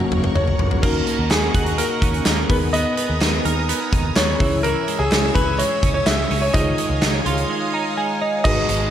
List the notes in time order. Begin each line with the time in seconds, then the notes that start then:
Already playing: F#3 A#3 C#4 F#4 A#4 C#5 F#5 C#6
0.00 mid tom
0.12 F#1, mid tom
0.24 mid tom
0.35 F#1 C#5, mid tom
0.47 floor tom
0.59 F#1, floor tom
0.71 floor tom
0.83 D#2 A#3 C#4 D#4 F#4 A#4 D#5 F#5 C#6, kick, crash
1.07 A#3, closed hi-hat
1.19 D#2
1.30 D#2 C#4 G#4, snare, clap, closed hi-hat
1.54 D#2 F#4, kick, closed hi-hat
1.66 closed hi-hat
1.78 A#3 A#4, closed hi-hat
2.02 D#2 C#4, kick, closed hi-hat
2.14 closed hi-hat
2.25 D#2 A#3, snare, clap, closed hi-hat
2.49 D#2 B3 D#4 G#4 A#4 B4 G#5 A#5 D#6, kick, open hi-hat
2.73 B3 D#5, closed hi-hat
2.97 B3, closed hi-hat
3.10 D#2
3.21 D#2 D#4, snare, clap, closed hi-hat
3.45 D#2 A#4, closed hi-hat
3.69 B3, closed hi-hat
3.93 D#2 D#4, kick, closed hi-hat
4.16 D#2 B3 C#5, snare, clap, closed hi-hat
4.39 C#2 E3 C#4 E4 G#4 C#5 E5 E6, kick, open hi-hat
4.63 E3 A#4, closed hi-hat
4.88 G#3, closed hi-hat
4.99 C#2 G#4
5.12 C#2 C#4, snare, clap, closed hi-hat
5.35 C#2 G#4 B4, kick, closed hi-hat
5.59 G#3 C#5, closed hi-hat
5.83 C#2 C#4, kick, closed hi-hat
5.94 C#5
6.06 C#2 G#3 E5, snare, clap, closed hi-hat
6.31 C#2 C#4, open hi-hat
6.42 C#5
6.53 C#2 D#3 D#4 F4 G#4 C5 D#5 F5 D#6, kick, closed hi-hat
6.61 C#5
6.78 G#3, closed hi-hat
6.90 C#2
7.02 C#2 D#4, snare, clap, closed hi-hat
7.26 C#2 F4, closed hi-hat
7.38 closed hi-hat
7.50 G#3
7.74 D#4 A#5
7.97 G#3 G#5
8.21 D#4 D#5
8.44 G#1 G#2 D#3 G#3 B3 D#4 F#4 G#4 B4 D#5 F#5 G#5 D#6, kick, crash
8.68 G#1 D#3 G#3, closed hi-hat